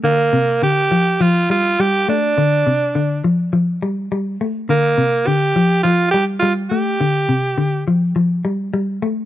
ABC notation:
X:1
M:4/4
L:1/8
Q:1/4=104
K:Gm
V:1 name="Tenor saxophone"
B,2 G2 F F G D- | D3 z4 z | B,2 G2 F G F G- | G3 z4 z |]
V:2 name="Clean electric guitar" clef=bass
D, C, D, F, F, G, G, A, | D, C, D, F, F, G, G, A, | D, C, D, F, F, G, G, A, | D, C, D, F, F, G, G, A, |]